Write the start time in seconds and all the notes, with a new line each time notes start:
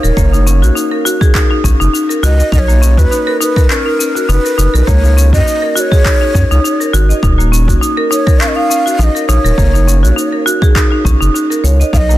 Already playing: C#5
0.03 D#1 A#4, cabasa
0.17 F#1 A#3, kick, cabasa
0.33 D#4, cabasa
0.46 C#4, cabasa
0.62 A#1 F#4, cabasa
0.76 D#4, cabasa
0.91 A#4
1.05 F#4, cabasa
1.21 G#4, kick, cabasa
1.35 D#4, kick, clap, cabasa
1.51 D#4
1.64 A#1 C#4, kick, cabasa
1.80 F#1 D#4, cabasa
1.93 D#4, cabasa
2.09 A#4, cabasa
2.23 C#2 F#4 D#5, cabasa
2.39 D#5, cabasa
2.52 B1 D#4 D#5, kick, cabasa
2.59 C#5
2.68 A#3, cabasa
2.82 C#4, cabasa
2.98 D#2 F#4 B4, kick, cabasa
3.11 D#4, cabasa
3.27 A#4
3.40 D#4 B4, cabasa
3.56 A#4, kick, cabasa
3.64 B4
3.70 C#4 B4, clap, cabasa
3.74 A#4
3.86 D#4
3.99 C#4, cabasa
4.15 F#4, cabasa
4.29 F#1 D#4 B4, cabasa
4.45 A#4, cabasa
4.58 F#1 D#4, cabasa
4.74 B1 A#4, cabasa
4.87 C#2 A#3 C#5, kick, cabasa
5.03 D#4, cabasa
5.17 C#4, cabasa
5.33 F#2 F#4 D#5, kick, cabasa
5.46 D#4, cabasa
5.62 A#4
5.76 F#4 D#5, cabasa
5.80 C#5
5.92 G#4, kick, cabasa
6.05 D#4, kick, clap, cabasa
6.21 D#4
6.35 F#2 C#4, kick, cabasa
6.51 C#2 D#4, cabasa
6.64 D#4, cabasa
6.80 A#4, cabasa
6.93 G#1 F#4, cabasa
7.09 D#5, cabasa
7.23 D#1 D#4, kick, cabasa
7.39 A#3, cabasa
7.52 C#4, cabasa
7.68 F#1 F#4, kick, cabasa
7.81 D#4, cabasa
7.97 A#4
8.11 D#4 C#5, cabasa
8.27 A#4, kick, cabasa
8.40 C#4 F5, clap, cabasa
8.48 D#5
8.56 D#4 F5
8.70 C#4, cabasa
8.86 F#4, cabasa
8.99 A#1 D#4 F5, cabasa
9.04 D#5
9.15 A#4, cabasa
9.28 A#1 D#4 C#5, cabasa
9.44 D#1 A#4, cabasa
9.58 F#1 A#3, kick, cabasa
9.74 D#4, cabasa
9.87 C#4, cabasa
10.03 A#1 F#4, cabasa
10.16 D#4, cabasa
10.32 A#4
10.46 F#4, cabasa
10.62 G#4, kick, cabasa
10.75 D#4, kick, clap, cabasa
10.92 D#4
11.05 A#1 C#4, kick, cabasa
11.21 F#1 D#4, cabasa
11.34 D#4, cabasa
11.50 A#4, cabasa
11.64 C#2 C#5, cabasa
11.80 D#5, cabasa
11.93 B1 D#4 F5, kick, cabasa
11.97 D#5
12.09 A#3, cabasa